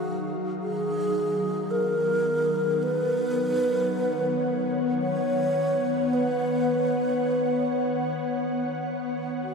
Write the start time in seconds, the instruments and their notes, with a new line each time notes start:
Already playing: ambient pad D#3 F#3 D#4 F5, alto flute F#4
0.62 alto flute G#4
0.75 ambient pad B3
1.71 alto flute A#4
2.68 ambient pad C#5
2.80 alto flute B4, ambient pad F#5
5.02 alto flute C#5
6.13 alto flute B4
9.43 alto flute F#4